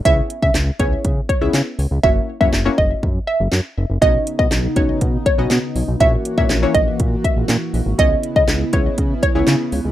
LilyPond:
<<
  \new Staff \with { instrumentName = "Synth pluck" } { \time 4/4 \key fis \mixolydian \tempo 4 = 121 e''8 r16 e''16 r8 cis''8. r16 cis''16 r4 r16 | e''8 r16 e''16 r8 dis''8. r16 e''16 r4 r16 | dis''8 r16 dis''16 r8 cis''8. r16 cis''16 r4 r16 | e''8 r16 e''16 r8 dis''8. r16 e''16 r4 r16 |
dis''8 r16 dis''16 r8 cis''8. r16 cis''16 r4 r16 | }
  \new Staff \with { instrumentName = "Synth pluck" } { \time 4/4 \key fis \mixolydian <b cis' e' gis' cis''>4 r8 <b cis' e' gis' cis''>8. r8 <b cis' e' gis' e''>8. r8 | <ais cis' e' fis' cis''>8 r16 <ais cis' e' fis' cis''>16 r16 <ais cis' e' fis' cis''>4. r4 r16 | <b cis' dis' fis' cis''>4 r8 <b cis' dis' fis' cis''>8. r8 <b cis' dis' fis' dis''>8. r8 | <ais cis' e' fis' cis''>8 r16 <ais cis' e' fis' cis''>16 r16 <ais cis' e' fis' cis''>4. r4 r16 |
<b cis' e' gis' cis''>4 r8 <b cis' e' gis' cis''>8. r8 <b cis' e' gis' cis''>8. r8 | }
  \new Staff \with { instrumentName = "Analog synth pad" } { \time 4/4 \key fis \mixolydian r1 | r1 | <cis b dis'>1 | <e ais fis'>1 |
<cis b e'>1 | }
  \new Staff \with { instrumentName = "Analog synth bass" } { \clef bass \time 4/4 \key fis \mixolydian cis,8 r16 cis16 cis,8 cis,8 cis8 r16 cis,16 cis16 r16 cis,16 cis,16 | fis,,8 r16 fis,16 fis,,8 fis,,8 fis,8 r16 fis,,16 fis,16 r16 fis,,16 fis,,16 | b,,8 r16 b,16 b,,8 b,,8 b,8 r16 b,,16 b,16 r16 b,,16 b,,16 | ais,,8 r16 ais,16 ais,,8 ais,,8 ais,8 r16 ais,,16 ais,16 r16 ais,,16 gis,,16 |
cis,8 r16 cis16 cis,8 cis,8 cis8 r16 cis,16 cis16 r16 cis,16 cis,16 | }
  \new DrumStaff \with { instrumentName = "Drums" } \drummode { \time 4/4 <hh bd>8 hh16 bd16 <hc hh sn>8 <hh bd>8 <hh bd>8 <hh bd>8 <hc hh sn>8 hho8 | bd8. bd16 <hc sn>8 bd8 bd4 <hc sn>4 | <hh bd>8 hh16 bd16 <hc hh sn>8 <hh bd>8 <hh bd>8 <hh bd>8 <hc hh sn>8 hho8 | <hh bd>8 hh16 bd16 <hc hh sn>8 <hh bd>8 <hh bd>8 <hh bd>8 <hc hh sn>8 hho8 |
<hh bd>8 hh16 bd16 <hc hh sn>8 <hh bd>8 <hh bd>8 <hh bd>8 <hc hh sn>8 hho8 | }
>>